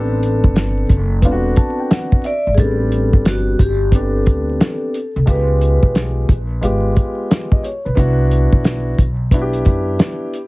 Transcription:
Already playing: upright bass A1, grand piano B3 C4 D4 A4, vibraphone A4
0.23 closed hi-hat
0.44 upright bass G1, kick
0.56 snare, closed hi-hat
0.89 upright bass F#1, kick, closed hi-hat
1.22 upright bass E1, grand piano B3 C4 D4 F4, kick, closed hi-hat
1.32 grand piano F#4
1.56 grand piano A5, kick, closed hi-hat
1.79 grand piano G5
1.90 grand piano F#5, snare, closed hi-hat
2.12 kick
2.24 vibraphone D5, grand piano E5, closed hi-hat
2.47 upright bass G#1
2.55 upright bass A1, grand piano B3 C4, vibraphone G#4, kick, closed hi-hat
2.59 grand piano G3 D4, vibraphone A4
2.92 closed hi-hat
3.13 upright bass G1, kick
3.25 vibraphone F#4, snare, closed hi-hat
3.59 upright bass G1, vibraphone G4, kick, closed hi-hat
3.92 grand piano B3 C4 D4 G4, kick, closed hi-hat
3.96 vibraphone A4
4.26 upright bass D2, kick, closed hi-hat
4.61 snare, closed hi-hat
4.94 closed hi-hat
5.16 upright bass C2
5.26 upright bass C#2, grand piano G#3 B3 F4 G4, kick, closed hi-hat
5.30 vibraphone B4
5.61 closed hi-hat
5.83 upright bass B1, kick
5.95 snare, closed hi-hat
6.29 upright bass A#1, kick, closed hi-hat
6.61 upright bass G#1, grand piano G#3 B3 F4 G4, closed hi-hat
6.96 kick, closed hi-hat
7.31 snare, closed hi-hat
7.52 grand piano D#5, kick
7.63 grand piano C#5, closed hi-hat
7.85 upright bass B1, grand piano B4
7.95 upright bass C2, grand piano B3 D4 E4 F#4, kick, closed hi-hat
8.31 closed hi-hat
8.52 upright bass B1, kick
8.64 snare, closed hi-hat
8.98 upright bass B1, kick, closed hi-hat
9.31 grand piano B3 D4 E4 F#4, kick, closed hi-hat
9.42 grand piano G4
9.53 closed hi-hat
9.65 upright bass F#2, kick, closed hi-hat
9.99 snare, closed hi-hat
10.34 closed hi-hat

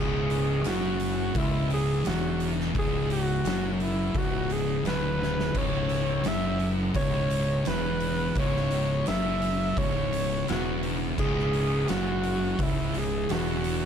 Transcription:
Already playing: fingered electric bass C#1, distorted electric guitar C#2, tonewheel organ C#3 G#3 E4, alto saxophone G#4
0.30 open hi-hat
0.64 fingered electric bass F#1, distorted electric guitar F#2, alto saxophone F#4, snare, open hi-hat
1.00 open hi-hat
1.35 fingered electric bass C#1, distorted electric guitar C#2, alto saxophone E4, kick, open hi-hat
1.70 alto saxophone G#4, open hi-hat
2.05 fingered electric bass E1, distorted electric guitar E2, alto saxophone F#4, snare, open hi-hat
2.40 open hi-hat
2.60 snare
2.75 fingered electric bass C#1, distorted electric guitar C#2, kick, open hi-hat
2.79 alto saxophone G#4
3.10 alto saxophone F#4, open hi-hat
3.44 fingered electric bass F#1, distorted electric guitar F#2, snare, open hi-hat
3.72 alto saxophone C#4
3.80 alto saxophone E4, open hi-hat
4.14 fingered electric bass C#1, distorted electric guitar C#2, alto saxophone F#4, kick, open hi-hat
4.50 alto saxophone G#4, open hi-hat
4.84 fingered electric bass D1, distorted electric guitar D2, alto saxophone B4, snare, open hi-hat
5.22 snare
5.39 snare
5.54 fingered electric bass C#1, distorted electric guitar C#2, alto saxophone C#5, kick, open hi-hat, crash
5.89 open hi-hat
6.24 fingered electric bass F#1, distorted electric guitar F#2, alto saxophone E5, snare, open hi-hat
6.60 open hi-hat
6.94 fingered electric bass C#1, distorted electric guitar C#2, alto saxophone C#5, kick, open hi-hat
7.30 open hi-hat
7.65 fingered electric bass E1, distorted electric guitar E2, alto saxophone B4, snare, open hi-hat
8.00 open hi-hat
8.35 fingered electric bass C#1, distorted electric guitar C#2, alto saxophone C#5, kick, open hi-hat
8.56 snare
8.71 open hi-hat
9.06 fingered electric bass F#1, distorted electric guitar F#2, alto saxophone E5, snare, open hi-hat
9.42 open hi-hat
9.76 fingered electric bass C#1, distorted electric guitar C#2, alto saxophone C#5, kick, open hi-hat
10.13 open hi-hat
10.48 fingered electric bass E1, distorted electric guitar E2, alto saxophone F#4, snare, open hi-hat
10.83 open hi-hat
11.18 fingered electric bass C#1, distorted electric guitar C#2, alto saxophone G#4, kick, crash
11.39 snare
11.53 open hi-hat
11.88 fingered electric bass F#1, distorted electric guitar F#2, alto saxophone F#4, snare, open hi-hat
12.23 open hi-hat
12.59 fingered electric bass C#1, distorted electric guitar C#2, alto saxophone E4, kick, open hi-hat
12.94 alto saxophone G#4, open hi-hat
13.29 fingered electric bass E1, distorted electric guitar E2, alto saxophone F#4, snare, open hi-hat
13.64 open hi-hat

